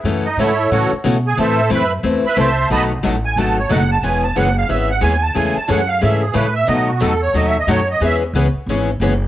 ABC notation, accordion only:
X:1
M:4/4
L:1/8
Q:"Swing" 1/4=181
K:E
V:1 name="Accordion"
z [Dd] [EAce]2 [FAcf] z2 [Gg] | [A=cea]2 [Beb] z2 [Beb] [cea=c']2 | [dabd'] z2 g a c f a | g a f =f e ^f g a |
g a f =f e G B e | d F A c (3d e d c d | e z6 z |]